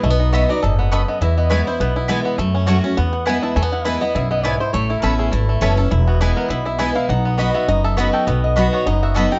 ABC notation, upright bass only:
X:1
M:4/4
L:1/8
Q:"Swing" 1/4=204
K:E
V:1 name="Upright bass" clef=bass
B,,,4 F,,,4 | E,,4 B,,,4 | F,,4 E,,4 | E,,4 B,,,4 |
A,,,2 A,,,2 G,,,2 F,,,2 | E,,,4 B,,,4 | B,,,4 F,,,4 | B,,,4 F,,,4 |]